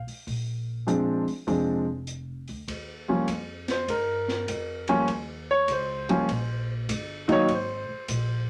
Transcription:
0.07 muted upright bass stroke, open hi-hat
0.27 upright bass A#1, kick, open hi-hat
0.87 grand piano F3 G#3 C4 D4, closed hi-hat
1.28 muted upright bass stroke, open hi-hat
1.47 upright bass F1, grand piano F3 G#3 C4 D4, kick, open hi-hat
2.07 closed hi-hat
2.48 upright bass D2, open hi-hat
2.68 upright bass D#2, kick, ride
3.08 grand piano F3 G3 A#3 C#4
3.27 upright bass F2, kick, hi-hat pedal, ride
3.68 grand piano C5, snare, ride
3.88 upright bass G2, grand piano A#4, kick, ride
4.28 snare
4.48 upright bass F2, kick, hi-hat pedal, ride
4.88 grand piano F3 G3 A#3 C#4, ride
5.08 upright bass D#2, kick, ride
5.51 grand piano C#5
5.68 upright bass C#2, kick, hi-hat pedal, ride
5.72 grand piano C5
6.09 grand piano F3 G3 A#3 C#4, ride
6.29 upright bass A#1, kick, ride
6.89 upright bass G1, kick, hi-hat pedal, ride
7.28 grand piano D#3 F#3 A#3 D#4, ride
7.32 grand piano C#5
7.48 upright bass G#1, kick, ride
7.54 grand piano C5
7.89 muted upright bass stroke
8.08 upright bass A#1, kick, hi-hat pedal, ride

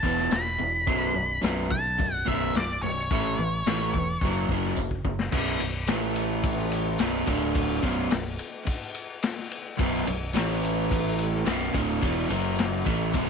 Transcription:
Already playing: lead electric guitar A5
0.03 fingered electric bass E1, overdriven electric guitar E2 B2 E3, kick
0.18 snare
0.31 fingered electric bass E1, overdriven electric guitar E2 B2, lead electric guitar B5, snare, open hi-hat, tambourine
0.46 snare
0.59 fingered electric bass E1, overdriven electric guitar E2 B2
0.87 fingered electric bass B0, overdriven electric guitar B1 F#2 B2, kick, open hi-hat
1.14 fingered electric bass B0, overdriven electric guitar B1 F#2
1.41 fingered electric bass B0, overdriven electric guitar B1 F#2 B2, snare, open hi-hat, tambourine
1.70 overdriven electric guitar B1 F#2, fingered electric bass B1, lead electric guitar A5, kick
1.99 fingered electric bass B0, overdriven electric guitar B1 F#2, kick, open hi-hat
2.26 fingered electric bass B0, overdriven electric guitar B1 F#2 B2, lead electric guitar E5, kick
2.53 fingered electric bass B0, overdriven electric guitar B1 F#2, lead electric guitar D5, snare, open hi-hat, tambourine
2.82 fingered electric bass B0, overdriven electric guitar B1 F#2, lead electric guitar C#5
3.11 fingered electric bass A1, overdriven electric guitar A2 E3 A3, kick, open hi-hat
3.39 fingered electric bass A1, overdriven electric guitar A2 E3
3.64 fingered electric bass A1, overdriven electric guitar A2 E3 A3, snare, open hi-hat, tambourine
3.94 fingered electric bass E1, overdriven electric guitar A2 E3, kick
4.21 fingered electric bass F#1, overdriven electric guitar F#2 C#3 F#3, kick, open hi-hat
4.49 fingered electric bass F#1, overdriven electric guitar F#2 C#3 F#3, kick
4.65 snare
4.76 fingered electric bass F#1, overdriven electric guitar F#2 C#3, kick, tambourine
4.91 kick
5.05 fingered electric bass F#1, overdriven electric guitar F#2 C#3, kick
5.19 snare
5.32 fingered electric bass B0, overdriven electric guitar B1 F#2 B2, kick, crash
5.60 fingered electric bass B0, overdriven electric guitar B1 F#2, ride, tambourine
5.87 fingered electric bass A1, overdriven electric guitar A2 E3 A3, snare, ride, tambourine
6.15 ride, tambourine
6.43 kick, ride, tambourine
6.72 ride, tambourine
6.98 fingered electric bass B0, overdriven electric guitar B1 F#2 B2, snare, ride, tambourine
7.26 fingered electric bass D1, overdriven electric guitar D2 A2 D3, kick, ride, tambourine
7.55 kick, ride
7.82 fingered electric bass B0, overdriven electric guitar B1 F#2 B2, kick, ride
8.10 fingered electric bass B0, overdriven electric guitar B1 F#2, snare, ride, tambourine
8.39 ride, tambourine
8.66 muted overdriven electric guitar stroke, muted fingered electric bass stroke, kick, ride, tambourine
8.95 ride, tambourine
9.22 snare, ride, tambourine
9.38 snare
9.51 ride, tambourine
9.77 fingered electric bass B0, overdriven electric guitar B1 F#2 B2, kick, ride
10.06 fingered electric bass B0, overdriven electric guitar B1 F#2, ride, tambourine
10.33 fingered electric bass A1, overdriven electric guitar A2 E3 A3, snare, ride, tambourine
10.61 ride, tambourine
10.89 kick, ride, tambourine
11.19 ride, tambourine
11.35 snare
11.46 fingered electric bass B0, overdriven electric guitar B1 F#2 B2, snare, ride, tambourine
11.73 fingered electric bass D1, overdriven electric guitar D2 A2 D3, kick, ride, tambourine
12.01 fingered electric bass E1, overdriven electric guitar E2 B2 E3, kick, ride, tambourine
12.29 fingered electric bass F#1, overdriven electric guitar F#2 C#3 F#3, ride, tambourine
12.56 ride, tambourine
12.60 snare
12.84 fingered electric bass A1, overdriven electric guitar A2 E3 A3, kick, ride, tambourine
13.12 fingered electric bass B0, overdriven electric guitar B1 F#2 B2, kick, ride, tambourine

